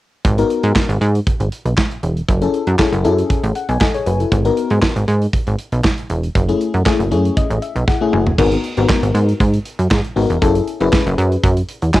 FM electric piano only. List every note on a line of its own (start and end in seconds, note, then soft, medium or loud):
0.38 0.84 B3 medium
0.38 0.84 D#4 medium
0.38 0.84 F#4 medium
0.38 0.84 A#4 loud
2.41 2.58 C#4 medium
2.41 2.59 E4 medium
2.41 2.59 G#4 medium
2.41 2.59 A4 medium
2.79 2.91 C#4 medium
2.79 2.91 E4 medium
2.79 2.91 G#4 medium
2.79 2.92 A4 medium
3.04 3.39 C#4 medium
3.04 3.40 E4 medium
3.04 3.40 G#4 medium
3.04 3.40 A4 loud
3.55 3.68 F#5 medium
3.69 3.80 G#5 medium
3.81 3.94 A4 soft
3.81 3.94 D#5 medium
3.81 4.28 G#5 medium
3.94 4.06 G#4 medium
3.94 4.06 C#5 medium
4.06 4.19 F#4 soft
4.06 4.19 B4 medium
4.20 4.44 E4 medium
4.20 4.44 A4 medium
4.45 4.91 B3 medium
4.45 4.91 D#4 medium
4.45 4.91 F#4 medium
4.45 4.91 A#4 loud
6.48 6.65 A3 medium
6.48 6.65 C#4 medium
6.48 6.65 E4 medium
6.48 6.65 G#4 medium
6.85 6.98 A3 medium
6.85 6.98 C#4 medium
6.85 6.98 E4 medium
6.85 6.98 G#4 loud
7.11 7.46 A3 medium
7.11 7.46 C#4 medium
7.11 7.46 E4 medium
7.11 7.47 G#4 medium
7.11 7.35 C#5 medium
7.37 7.60 D#5 medium
7.62 7.86 E5 medium
7.87 7.94 E4 medium
7.87 7.94 G#4 loud
7.87 8.11 F#5 medium
8.01 8.24 A3 medium
8.01 8.24 C#4 medium
8.01 8.24 E4 medium
8.01 8.24 G#4 medium
8.13 8.37 G#5 medium
8.38 8.56 B3 medium
8.38 8.56 D#4 medium
8.38 8.56 F#4 medium
8.38 8.57 A#4 loud
8.77 9.23 B3 medium
8.77 9.23 D#4 medium
8.77 9.23 F#4 medium
8.77 9.23 A#4 medium
10.16 10.28 B3 medium
10.16 10.29 D#4 medium
10.16 10.29 F#4 medium
10.16 10.29 A#4 medium
10.42 10.60 C#4 medium
10.42 10.60 E4 medium
10.42 10.60 G#4 medium
10.42 10.60 A4 loud
10.80 11.26 C#4 medium
10.80 11.27 E4 medium
10.80 11.27 G#4 medium
10.80 11.27 B4 medium
11.94 12.00 D#5 medium
11.94 12.00 G#5 medium